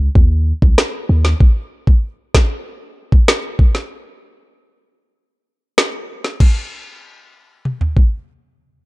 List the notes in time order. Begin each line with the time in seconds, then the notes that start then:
0.15 D#2, kick
0.62 C2, kick
0.78 cross-stick, snare
1.09 D#2
1.25 snare
1.40 kick
1.87 kick
2.34 kick, snare
3.12 kick
3.28 cross-stick, snare
3.59 kick
3.75 snare
5.78 cross-stick, snare
6.24 snare
6.40 kick, crash
7.65 mid tom
7.81 floor tom
7.97 kick